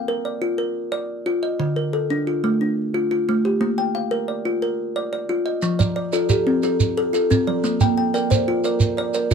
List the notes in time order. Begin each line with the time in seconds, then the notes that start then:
Already playing: F5 G5
0.08 A#4
0.25 D5
0.42 F4
0.58 A#4
0.92 D5
1.26 F4
1.43 D#5
1.60 D3
1.76 A#4
1.93 A4
2.10 D4
2.27 F4
2.44 A3
2.61 D4
2.94 F4
3.11 F4
3.29 A3
3.45 G4
3.61 A#3
3.78 G5
3.95 F5
4.11 A#4
4.28 D5
4.45 F4
4.62 A#4
4.96 D5
5.13 D5
5.29 F4
5.46 D#5
5.62 F3, shekere
5.79 F3 D5, shekere
5.96 D5
6.13 F4 A4 D5, shekere
6.29 G4 A4, shekere
6.47 C4
6.63 F4 A4, shekere
6.80 shekere
6.97 A4
7.13 F4 A4, shekere
7.30 C4 A4, shekere
7.47 F3 D5
7.64 A#3, shekere
7.81 A#3 G5, shekere
7.98 G5
8.14 A#4 D5 G5, shekere
8.30 C5 D5, shekere
8.48 F4
8.64 A#4 D5, shekere
8.80 shekere
8.97 D5
9.14 A#4 D5, shekere